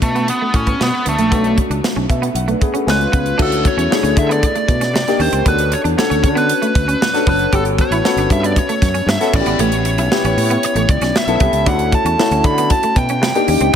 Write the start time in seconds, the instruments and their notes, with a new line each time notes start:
Already playing: grand piano A3 C#4 D4 F#4
0.02 fretless electric bass B2, lead electric guitar A3, muted clean electric guitar stroke, kick, closed hi-hat
0.15 clean electric guitar B3, closed hi-hat
0.28 lead electric guitar B3, closed hi-hat
0.42 clean electric guitar A3
0.54 fretless electric bass A2, lead electric guitar C#4, muted clean electric guitar stroke, kick, closed hi-hat
0.67 clean electric guitar B3, kick, closed hi-hat
0.80 fretless electric bass B2, lead electric guitar B3, muted clean electric guitar stroke, snare
1.06 fretless electric bass D2, lead electric guitar A3, clean electric guitar B3, closed hi-hat
1.18 fretless electric bass A#1, clean electric guitar A3, closed hi-hat
1.31 fretless electric bass B1, grand piano A3 C#4 D4 F#4, clean electric guitar B3, kick, closed hi-hat
1.44 closed hi-hat
1.57 muted clean electric guitar stroke, kick, closed hi-hat
1.70 fretless electric bass C#2, clean electric guitar D4, closed hi-hat
1.84 snare
1.96 fretless electric bass B1, clean electric guitar C#4
2.09 fretless electric bass B2, grand piano E5, muted clean electric guitar stroke, kick, closed hi-hat
2.22 clean electric guitar B3, closed hi-hat
2.35 fretless electric bass B1, grand piano F#5, closed hi-hat
2.48 clean electric guitar A3, grand piano D4 B4, closed hi-hat
2.61 grand piano B3 G#4, muted clean electric guitar stroke, kick, closed hi-hat
2.74 grand piano A3 F#4, clean electric guitar C#4, closed hi-hat
2.87 fretless electric bass C#2, grand piano G#3 B3 C#4 F4 G#5, lead electric guitar B4, snare
3.01 closed hi-hat
3.12 fretless electric bass C#2, clean electric guitar B3, kick, closed hi-hat
3.26 closed hi-hat
3.38 fretless electric bass D2, grand piano A3 C#4 E4 F#4, clean electric guitar D4, kick, crash
3.42 lead electric guitar A4
3.52 closed hi-hat
3.65 lead electric guitar C#5, muted clean electric guitar stroke, kick, closed hi-hat
3.77 fretless electric bass E2, clean electric guitar C#4, closed hi-hat
3.90 grand piano A3 D4 E4 G#4, snare
4.03 fretless electric bass D2, clean electric guitar C#4, closed hi-hat
4.16 fretless electric bass D3, lead electric guitar E5, muted clean electric guitar stroke, kick, closed hi-hat
4.29 clean electric guitar B3, lead electric guitar D5, closed hi-hat
4.43 kick, closed hi-hat
4.55 clean electric guitar A3, closed hi-hat
4.68 fretless electric bass B2, muted clean electric guitar stroke, kick, closed hi-hat
4.81 clean electric guitar C#4, snare, closed hi-hat
4.93 fretless electric bass C3, muted clean electric guitar stroke, snare
5.07 grand piano A#3 D4 D#4 G4, snare, closed hi-hat
5.19 fretless electric bass D#2, grand piano A#3 D4 D#4 G4, clean electric guitar C#4, lead electric guitar C5, open hi-hat
5.33 fretless electric bass C#2, clean electric guitar C4, closed hi-hat
5.46 fretless electric bass D2, clean electric guitar B3, grand piano C#4 D4 F#4 A4, lead electric guitar B4, kick, closed hi-hat
5.58 closed hi-hat
5.72 lead electric guitar C#5, muted clean electric guitar stroke, closed hi-hat
5.84 fretless electric bass E2, clean electric guitar D4, closed hi-hat
5.97 grand piano C#4 D4 F#4 A4, lead electric guitar C#5, snare
6.10 fretless electric bass D2, clean electric guitar C#4, closed hi-hat
6.23 fretless electric bass D3, muted clean electric guitar stroke, kick, closed hi-hat
6.35 clean electric guitar B3, lead electric guitar B4, closed hi-hat
6.49 closed hi-hat
6.62 clean electric guitar A3, closed hi-hat
6.75 fretless electric bass D2, muted clean electric guitar stroke, kick, closed hi-hat
6.88 clean electric guitar C#4, closed hi-hat
7.02 lead electric guitar B4, snare
7.13 grand piano C#4 D4 F#4 A4, snare, closed hi-hat
7.26 fretless electric bass F#1, clean electric guitar B3, grand piano C#4 D4 F#4 A4, lead electric guitar B4, kick, open hi-hat
7.39 closed hi-hat
7.52 fretless electric bass G1, grand piano B3 C#4 F#4 A4, clean electric guitar G4, lead electric guitar A4, kick, closed hi-hat
7.65 closed hi-hat
7.78 lead electric guitar C#5, muted clean electric guitar stroke, kick, closed hi-hat
7.90 fretless electric bass A1, clean electric guitar E4, closed hi-hat
8.04 grand piano B3 C#4 F#4 A4, snare
8.16 fretless electric bass G1, clean electric guitar D4, closed hi-hat
8.30 fretless electric bass G2, lead electric guitar E5, muted clean electric guitar stroke, kick, closed hi-hat
8.43 clean electric guitar B3, lead electric guitar D5, closed hi-hat
8.56 lead electric guitar C#5, kick, closed hi-hat
8.69 clean electric guitar A3, closed hi-hat
8.82 fretless electric bass F#2, muted clean electric guitar stroke, kick, snare, closed hi-hat
8.94 clean electric guitar C#4, closed hi-hat
9.06 fretless electric bass G2, lead electric guitar E5, muted clean electric guitar stroke, snare
9.20 grand piano B3 C#4 F#4 A4, snare, closed hi-hat
9.33 fretless electric bass A1, grand piano B3 C#4 E4 F#4, clean electric guitar C#4, lead electric guitar D5, kick, snare, crash
9.40 grand piano G4
9.46 fretless electric bass G#1, clean electric guitar B3, closed hi-hat
9.59 fretless electric bass A1, clean electric guitar A3, lead electric guitar C#5, closed hi-hat
9.72 closed hi-hat
9.85 muted clean electric guitar stroke, closed hi-hat
9.98 fretless electric bass B1, clean electric guitar E4, closed hi-hat
10.11 grand piano B3 C#4 E4 G4, snare
10.24 fretless electric bass A1, clean electric guitar C#4, closed hi-hat
10.37 fretless electric bass A2, muted clean electric guitar stroke, open hi-hat
10.50 clean electric guitar B3, closed hi-hat
10.63 lead electric guitar C#5, closed hi-hat
10.75 fretless electric bass A1, clean electric guitar A3, closed hi-hat
10.89 fretless electric bass C#2, lead electric guitar D5, muted clean electric guitar stroke, kick, closed hi-hat
11.01 fretless electric bass B1, clean electric guitar C#4, snare, closed hi-hat
11.16 lead electric guitar E5, snare
11.27 fretless electric bass B1, grand piano B3 C#4 E4 A4, closed hi-hat
11.40 fretless electric bass C2, grand piano B3 C#4 E4 G4, clean electric guitar B3, kick, closed hi-hat
11.53 fretless electric bass C#2, closed hi-hat
11.66 fretless electric bass D2, grand piano A3 C#4 E4 F#4, clean electric guitar D4, lead electric guitar F#5, kick, closed hi-hat
11.79 closed hi-hat
11.92 lead electric guitar A5, muted clean electric guitar stroke, kick, closed hi-hat
12.05 fretless electric bass E2, clean electric guitar C#4, closed hi-hat
12.18 grand piano A3 C#4 E4 F#4, snare
12.31 fretless electric bass D2, clean electric guitar C#4, closed hi-hat
12.44 fretless electric bass D3, lead electric guitar B5, muted clean electric guitar stroke, kick, closed hi-hat
12.58 clean electric guitar B3, closed hi-hat
12.70 lead electric guitar A5, kick, closed hi-hat
12.83 clean electric guitar A3, closed hi-hat
12.96 fretless electric bass B2, lead electric guitar G5, muted clean electric guitar stroke, kick, closed hi-hat
13.09 clean electric guitar C#4, closed hi-hat
13.21 fretless electric bass C3, muted clean electric guitar stroke, snare
13.34 grand piano A#3 D4 D#4 G4, closed hi-hat
13.48 fretless electric bass D#2, grand piano A#3 D4 D#4 G4, clean electric guitar C#4, open hi-hat
13.60 fretless electric bass C#2, clean electric guitar C4, closed hi-hat